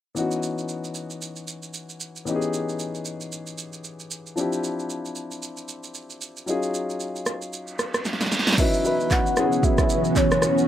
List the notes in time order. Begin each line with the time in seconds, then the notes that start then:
0.15 E3 B3 C#4 D#4 F#4, shaker
0.31 shaker
0.43 shaker
0.58 shaker
0.69 shaker
0.84 shaker
0.95 shaker
1.10 shaker
1.22 shaker
1.36 shaker
1.47 shaker
1.62 shaker
1.74 shaker
1.89 shaker
2.00 shaker
2.16 shaker
2.25 E3 B3 C#4 D#4 G4, shaker
2.35 G#4
2.42 shaker
2.53 shaker
2.69 shaker
2.79 shaker
2.95 shaker
3.05 shaker
3.21 shaker
3.32 shaker
3.47 shaker
3.58 shaker
3.73 shaker
3.84 shaker
4.00 shaker
4.11 shaker
4.27 shaker
4.36 F3 C4 D4 E4 G4, shaker
4.52 shaker
4.64 shaker
4.79 shaker
4.90 shaker
5.05 shaker
5.16 shaker
5.31 shaker
5.42 shaker
5.57 shaker
5.68 shaker
5.83 shaker
5.94 shaker
6.10 shaker
6.21 shaker
6.37 shaker
6.46 F#3 C#4 D#4 F4 G#4, shaker
6.63 shaker
6.74 shaker
6.90 shaker
7.00 shaker
7.16 shaker
7.26 cross-stick, shaker
7.42 shaker
7.53 reverse cymbal, shaker
7.67 shaker
7.79 cross-stick, shaker
7.94 cross-stick, shaker
8.05 snare, shaker
8.13 snare
8.21 snare, shaker
8.26 snare
8.32 snare, shaker
8.39 snare
8.47 snare, shaker
8.53 snare
8.58 E3 F#3 B3 C#4 D#4 E4 F#4 B4 E5, kick, crash, shaker
8.73 shaker
8.84 F#3 C#4 D#4 E4 B4, shaker
9.00 shaker
9.11 F#5, kick, clap, shaker
9.26 shaker
9.37 F#3 C#4 E4 F#4 G#4, cross-stick, shaker
9.52 shaker
9.63 E5, kick, shaker
9.78 kick, cross-stick, shaker
9.89 shaker
10.04 shaker
10.16 C#5, kick, clap, shaker
10.31 cross-stick, shaker
10.42 cross-stick, shaker
10.58 shaker